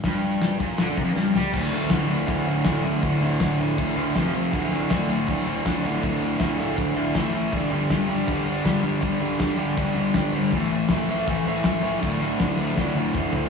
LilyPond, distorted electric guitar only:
\new Staff \with { instrumentName = "Distorted electric guitar" } { \clef bass \time 4/4 \key g \major \tempo 4 = 160 g,4. bes,8 d8 c16 f,16 g,8 g8 | <d, a, d>8 <d, a, d>8 <d, a, d>8 <d, a, d>8 <d, a, d>8 <d, a, d>8 <d, a, d>8 <d, a, d>8 | <d, a, d>8 <d, a, d>8 <d, a, d>8 <d, a, d>8 <d, a, d>8 <d, a, d>8 <f, c f>8 <f, c f>8 | <d, a, d>8 <d, a, d>8 <d, a, d>8 <d, a, d>8 <d, a, d>8 <d, a, d>8 <d, a, d>8 <d, a, d>8 |
<d, a, d>8 <d, a, d>8 <d, a, d>8 <d, a, d>8 <d, a, d>8 <d, a, d>8 <a, e a>8 <a, e a>8 | <g, d g>8 <g, d g>8 <g, d g>8 <g, d g>8 <g, d g>8 <g, d g>8 <g, d g>8 <g, d g>8 | <g, d g>8 <g, d g>8 <g, d g>8 <g, d g>8 <g, d g>8 <g, d g>8 <g, d g>8 <g, d g>8 | <a, e a>8 <a, e a>8 <a, e a>8 <a, e a>8 <a, e a>8 <a, e a>8 <a, e a>8 <a, e a>8 |
<d, a, d>8 <d, a, d>8 <d, a, d>8 <d, a, d>8 <d, a, d>8 <d, a, d>8 <d, a, d>8 <d, a, d>8 | }